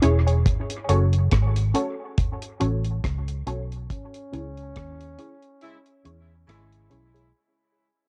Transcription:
0.02 E1 C#4 E4 G#4 C#5, closed hi-hat
0.27 G#4 C#5, closed hi-hat
0.46 kick, closed hi-hat
0.70 closed hi-hat
0.89 F#1 C#4 F#4 A4 C#5, closed hi-hat
1.13 closed hi-hat
1.31 G#1, kick, cross-stick, closed hi-hat
1.56 closed hi-hat
1.74 C#4 F#4 A4 C#5, closed hi-hat
2.18 kick, closed hi-hat
2.42 closed hi-hat
2.60 A1 C#4 F#4 A4 C#5, closed hi-hat
2.84 closed hi-hat
3.04 C#2, kick, cross-stick, closed hi-hat
3.28 closed hi-hat
3.46 B1 C#4 F#4 A4 C#5, closed hi-hat
3.72 closed hi-hat
3.90 C#4, kick, closed hi-hat
4.14 closed hi-hat
4.32 C#2 C#4 E4 G#4 C#5, closed hi-hat
4.57 closed hi-hat
4.76 D#2, kick, cross-stick, closed hi-hat
5.01 closed hi-hat
5.18 C#4 E4 G#4 C#5, closed hi-hat
5.43 closed hi-hat
5.61 C#3 G#3 E4, closed hi-hat
5.86 closed hi-hat
6.05 E2 C#4 E4 G#4 C#5, closed hi-hat
6.48 G#1 C#3 G#3 E4, cross-stick, closed hi-hat
6.73 closed hi-hat
6.90 B1 C#4 E4 G#4 C#5, closed hi-hat
7.14 G#4 C#5, closed hi-hat

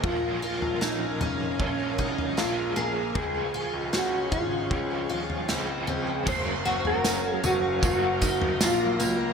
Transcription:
Already playing: A#4 A#5
0.01 A#1 A#2 F3 F4 F5 G#5, kick, floor tom
0.06 G#3 C#4 F4
0.42 F4
0.62 A#1, floor tom
0.81 A#1 C#4 D#4, snare
1.20 F1 C#4, floor tom
1.58 A#1 F3 G#3 C#4, kick, floor tom
1.64 F4
1.98 C2 D#4, kick
2.18 floor tom
2.36 A#1 F3 G#3 A#3 F4, snare
2.40 C#4 F4
2.76 A#1 A#3 G#4
3.13 C#2 C#3 G#4 F5 C#6, kick, floor tom
3.18 G#3 C4
3.54 F4
3.74 C#2
3.93 C#2 C#4 F#4, snare
4.32 G#1 C#4 F4, kick, floor tom
4.69 C#2 F3 G#3, kick, floor tom
4.73 C4 F4
5.10 D#2 F4
5.30 floor tom
5.47 C#2 F3 G#3 C4, snare
5.53 F4
5.87 C#2 C4, floor tom
6.24 F#1 F#3 A#3 A#4 F5 A#5, kick, floor tom, crash, tambourine
6.29 C#4 C5
6.65 F#1 F#4
6.85 A#4, floor tom
7.04 C#4, snare, tambourine
7.33 G#4
7.44 F#1 C#4 F#4, floor tom, tambourine
7.80 F#1 F#3 A#3, kick, floor tom, tambourine
7.85 C#4 F#4
8.22 F#1 D#4, kick, tambourine
8.42 floor tom
8.60 A#1 A#3 F4, snare, tambourine
8.99 C#2 A#3, tambourine

